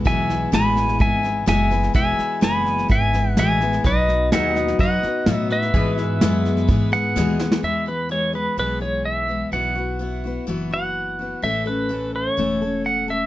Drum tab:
HH |----p-------p---|----p-------p---|----p-------p---|----p-------p---|
SD |o-o-o-ooo-o-o-oo|o-o-o-ooo-o-o-oo|o-o-o-ooo-o-o-oo|o-o-o-ooo-o-o-oo|
BD |o-------o-------|o-------o-------|o-------o-------|o-------o-------|

HH |----------------|----------------|----------------|
SD |----------------|----------------|----------------|
BD |----------------|----------------|----------------|